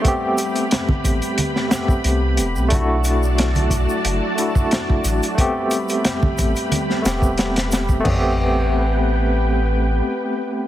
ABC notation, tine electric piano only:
X:1
M:4/4
L:1/8
Q:1/4=90
K:Ador
V:1 name="Tine electric piano"
[A,B,CG]4- [A,B,CG] [A,B,CG]3 | [A,DEF]4- [A,DEF] [A,DEF]3 | [A,B,CG]4- [A,B,CG] [A,B,CG]3 | [A,B,CG]8 |]